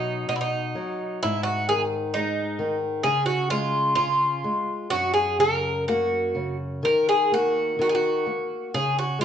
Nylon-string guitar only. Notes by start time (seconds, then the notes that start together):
Already playing: B2 F#3
0.28 B2
0.75 F#3
1.23 G#2
1.69 D#3
2.15 G#3
2.59 D#3
3.04 C#3
3.51 G#3
3.98 C#3
4.44 G#3
4.92 F#2
5.39 C#3
5.88 A#3
6.35 C#3
6.83 D#3
7.32 A#3
7.79 D#3
8.26 A#3
8.74 C#3
9.19 G#3